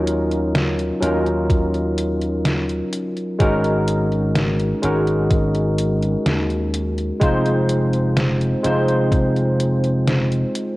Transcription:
Already playing: slap bass D#2, tine electric piano F#3 C#4 D#4 F4 A#4
0.07 closed hi-hat
0.31 closed hi-hat
0.55 snare, closed hi-hat
0.79 closed hi-hat
1.01 slap bass D#2, tine electric piano F#3 C#4 D#4 F4 A#4, closed hi-hat
1.26 closed hi-hat
1.50 kick, closed hi-hat
1.74 closed hi-hat
1.98 closed hi-hat
2.22 closed hi-hat
2.45 snare, closed hi-hat
2.69 closed hi-hat
2.93 closed hi-hat
3.17 closed hi-hat
3.39 slap bass G#1, tine electric piano G#3 C#4 D#4 F#4 A#4, kick, closed hi-hat
3.64 closed hi-hat
3.88 closed hi-hat
4.12 closed hi-hat
4.35 snare, closed hi-hat
4.59 closed hi-hat
4.82 slap bass G#1, tine electric piano G#3 C#4 D#4 F#4 A#4, closed hi-hat
5.07 closed hi-hat
5.31 kick, closed hi-hat
5.55 closed hi-hat
5.78 closed hi-hat
6.02 closed hi-hat
6.26 slap bass D#2, snare, closed hi-hat
6.50 closed hi-hat
6.74 closed hi-hat
6.98 closed hi-hat
7.20 slap bass F1, tine electric piano G#3 C4 D#4 F4 C5, kick, closed hi-hat
7.45 closed hi-hat
7.69 closed hi-hat
7.93 closed hi-hat
8.17 snare, closed hi-hat
8.41 closed hi-hat
8.63 slap bass F1, tine electric piano G#3 C4 D#4 F4 C5, closed hi-hat
8.88 closed hi-hat
9.12 kick, closed hi-hat
9.36 closed hi-hat
9.60 closed hi-hat
9.84 closed hi-hat
10.07 snare, closed hi-hat
10.32 closed hi-hat
10.55 closed hi-hat

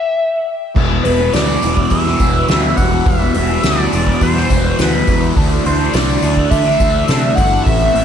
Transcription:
Already playing: analog synth lead E5
0.74 picked electric bass E1, distorted electric guitar E2 B2, string machine E3 G3 F#4, kick, crash, tambourine
0.79 distorted electric guitar E3
0.90 distorted electric guitar B2 E3
1.04 picked electric bass E1, distorted electric guitar E2 B2 E3, analog synth lead B4, open hi-hat, tambourine
1.19 distorted electric guitar B2 E3
1.33 picked electric bass D2, distorted electric guitar E2 B2 E3, analog synth lead D5, snare, open hi-hat, tambourine
1.62 picked electric bass E1, distorted electric guitar E2 B2 E3, open hi-hat, tambourine
1.76 distorted electric guitar B2 E3, kick
1.90 picked electric bass E2, analog synth lead E5, kick, open hi-hat, tambourine
2.05 distorted electric guitar B2 E3, snare
2.20 picked electric bass E1, distorted electric guitar E2 B2 E3, kick, open hi-hat, tambourine
2.48 picked electric bass D2, distorted electric guitar E2 B2 E3, snare, open hi-hat, tambourine
2.76 picked electric bass E1, distorted electric guitar E2 B2 E3, analog synth lead F#5, kick, open hi-hat, tambourine
2.91 distorted electric guitar B2 E3
3.05 picked electric bass E1, distorted electric guitar E2 B2 E3, analog synth lead E5, kick, open hi-hat, tambourine
3.20 distorted electric guitar B2 E3
3.34 picked electric bass E1, distorted electric guitar E2 B2 E3, open hi-hat
3.49 distorted electric guitar B2 E3
3.63 picked electric bass D2, distorted electric guitar E2 B2 E3, analog synth lead D5, snare, open hi-hat, tambourine
3.92 picked electric bass E1, distorted electric guitar E2 B2 E3, open hi-hat, tambourine
4.05 distorted electric guitar B2 E3, kick
4.21 picked electric bass E2, analog synth lead C5, kick, open hi-hat, tambourine
4.34 distorted electric guitar B2 E3, snare
4.49 picked electric bass E1, distorted electric guitar E2 B2 E3, kick, open hi-hat, tambourine
4.78 picked electric bass D2, distorted electric guitar E2 B2 E3, analog synth lead B4, snare, open hi-hat, tambourine
5.07 distorted electric guitar E2 B2 E3, picked electric bass E2, kick, open hi-hat, tambourine
5.21 distorted electric guitar B2 E3
5.35 picked electric bass D2, distorted electric guitar D3 A3 D4, string machine D4, kick, open hi-hat, tambourine
5.50 distorted electric guitar A3 D4
5.64 picked electric bass D2, distorted electric guitar D3 A3 D4, analog synth lead C5, open hi-hat, tambourine
5.79 distorted electric guitar A3 D4
5.93 picked electric bass C2, distorted electric guitar D3 A3 D4, analog synth lead D5, snare, open hi-hat, tambourine
6.21 picked electric bass D2, distorted electric guitar D3 A3 D4, open hi-hat, tambourine
6.36 distorted electric guitar A3 D4, kick
6.50 picked electric bass D3, analog synth lead E5, kick, open hi-hat, tambourine
6.65 distorted electric guitar A3 D4
6.79 picked electric bass D2, distorted electric guitar D3 A3 D4, kick, open hi-hat, tambourine
7.08 picked electric bass C3, distorted electric guitar D3 A3 D4, snare, open hi-hat, tambourine
7.35 picked electric bass G1, distorted electric guitar D3 A3, analog synth lead F#5, kick, open hi-hat, tambourine
7.40 distorted electric guitar D4
7.52 distorted electric guitar A3 D4
7.64 picked electric bass A1, distorted electric guitar A2 E3, string machine C4 A4, analog synth lead E5, kick, open hi-hat
7.68 distorted electric guitar A3
7.80 distorted electric guitar E3 A3
7.93 picked electric bass A1, distorted electric guitar A2 E3 A3, open hi-hat

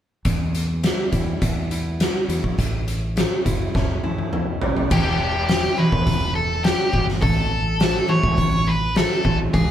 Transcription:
0.25 steel-string acoustic guitar E2, fretless electric bass E2, kick, closed hi-hat
0.55 closed hi-hat
0.83 steel-string acoustic guitar G3, snare, closed hi-hat
1.12 fretless electric bass E2, steel-string acoustic guitar E4, kick, closed hi-hat
1.42 fretless electric bass E2, steel-string acoustic guitar B3, kick, closed hi-hat
1.71 steel-string acoustic guitar E4, closed hi-hat
2.00 steel-string acoustic guitar G3, snare, closed hi-hat
2.29 fretless electric bass E2, steel-string acoustic guitar E4, closed hi-hat
2.44 fretless electric bass A#1, kick
2.58 fretless electric bass A1, steel-string acoustic guitar A2, kick, closed hi-hat
2.88 closed hi-hat
3.16 steel-string acoustic guitar A3, snare, closed hi-hat
3.45 fretless electric bass F#1, steel-string acoustic guitar E4, kick, closed hi-hat
3.74 fretless electric bass F#1, steel-string acoustic guitar C#4, kick, snare
4.03 steel-string acoustic guitar E4, high tom
4.18 high tom
4.33 steel-string acoustic guitar A3, mid tom
4.61 steel-string acoustic guitar E4, floor tom
4.77 floor tom
4.90 fretless electric bass E1, steel-string acoustic guitar E2 B2 E3, lead electric guitar G4, kick, crash
5.20 steel-string acoustic guitar E2 B2
5.48 steel-string acoustic guitar E2 B2, snare, open hi-hat
5.77 steel-string acoustic guitar E2 B2 E3, lead electric guitar B4
5.92 fretless electric bass E1, kick
6.07 fretless electric bass E1, steel-string acoustic guitar E2 B2, kick, open hi-hat
6.35 steel-string acoustic guitar E2 B2, lead electric guitar A4
6.64 steel-string acoustic guitar E2 B2, lead electric guitar G4, snare, open hi-hat
6.93 fretless electric bass G1, steel-string acoustic guitar E2 B2 E3, kick
7.09 snare
7.21 fretless electric bass A1, steel-string acoustic guitar A2 E3 A3, lead electric guitar A4, kick, open hi-hat
7.50 steel-string acoustic guitar A2 E3
7.79 steel-string acoustic guitar A2 E3, snare, open hi-hat
8.08 steel-string acoustic guitar A2 E3 A3, lead electric guitar C#5
8.23 fretless electric bass C#2, kick
8.37 fretless electric bass A1, steel-string acoustic guitar A2 E3, kick, open hi-hat
8.66 steel-string acoustic guitar A2 E3, lead electric guitar B4
8.95 steel-string acoustic guitar A2 E3, lead electric guitar A4, snare, open hi-hat
9.24 fretless electric bass A1, steel-string acoustic guitar A2 E3 A3, kick
9.53 fretless electric bass C#2, steel-string acoustic guitar C#3 E3 G#3, lead electric guitar G#4, kick, open hi-hat

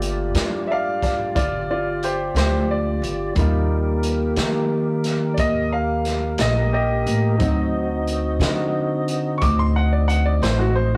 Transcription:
Already playing: upright bass G1, grand piano A3 A#3 F4, tonewheel organ F4 G4 D5
0.02 closed hi-hat
0.34 upright bass G2, snare, closed hi-hat
0.67 grand piano D5 E5
0.72 grand piano F5
1.02 grand piano D5 F5, kick, snare, closed hi-hat
1.35 upright bass G1, grand piano F4 D5, kick, closed hi-hat
1.71 grand piano F4 D5
2.03 grand piano G4 C5, closed hi-hat
2.35 upright bass D2, grand piano G4 C5, snare, closed hi-hat
2.71 grand piano D5
3.02 upright bass G1, closed hi-hat
3.35 upright bass D#2, grand piano G3 D#4 F4, tonewheel organ A#3 G4 A#4, kick, closed hi-hat
4.03 closed hi-hat
4.36 upright bass D#3, snare, closed hi-hat
5.04 snare, closed hi-hat
5.34 upright bass D#2, grand piano D5, kick, closed hi-hat
5.39 grand piano D#5
5.73 grand piano F5
6.05 snare, closed hi-hat
6.38 upright bass A#1, grand piano D#5, snare, closed hi-hat
6.73 grand piano G4 D#5
7.06 upright bass A1, closed hi-hat
7.38 upright bass D2, grand piano F#3 C4 D#4, tonewheel organ C4 D#4 F#4 D#5, kick, closed hi-hat
8.07 closed hi-hat
8.40 upright bass D3, snare, closed hi-hat
9.08 closed hi-hat
9.38 grand piano C#6 D6, closed hi-hat
9.42 upright bass D2, kick
9.59 grand piano C6
9.76 grand piano F#5
9.93 grand piano D5
10.08 grand piano F#5, closed hi-hat
10.26 grand piano D5
10.42 upright bass A1, grand piano C5, snare, closed hi-hat
10.59 grand piano F#4
10.75 grand piano C5

